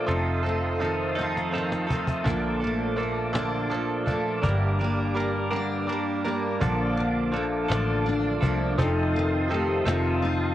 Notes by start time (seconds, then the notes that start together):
Already playing: F3 A3 D4 F5
0.07 F1 F2 F3 C4 D#4 A4 A5 C6 D#6
0.43 A3 C4 D#4 A4
0.80 D#3 F3 C4 D#4 A4
1.15 F3 C4 D#4 A4, cajon slap
1.37 cajon slap
1.51 D#3 F3 C4 D#4 A4
1.72 cajon slap
1.87 C4 D#4 A4, cajon bass
1.92 A3
2.07 cajon bass
2.24 A#1 A#2 D3 F3 A#3 D4 A4 F5 D6, cajon bass
2.60 F3 A3 A#3 D4 A4, cajon slap
2.96 F3 A#3 D4 A4, cajon slap
3.33 A#2 D3 F3 A#3 D4 A4, cajon slap
3.69 F3 A#3 D4 A4, cajon slap
4.06 F3 A3 A#3 D4 A4, cajon bass
4.42 G1 G2 D3 G3 A#3 D4 G4 A#4 D5, cajon bass
4.79 G3 A#3 D4 A#4, cajon slap
5.15 G3 A#3 D4 A#4, cajon slap
5.51 G2 D3 G3 A#3 D4 A#4
5.87 G3 A#3 D4 A#4
6.24 G3 A#3 D4 A#4
6.60 A#1 A#2 D3 F3 A#3 D4 A4 F5 A5 D6, cajon bass
6.97 F3
7.32 F3 A3 A#3 D4 A4
7.68 A1 D3 F3 A#3 D4 A4, cajon slap
8.06 D4
8.41 C2 F3 A3 A#3 D4 A4, cajon bass
8.77 F1 F2 F3 C4 D#4 A4 A5 C6 D#6, cajon bass
9.15 D#3, cajon slap
9.49 F3 A3 C4 D#4 G4 A4, cajon slap
9.86 F1 C3 F3 C4 D#4 F4 A4, cajon slap
10.22 D#4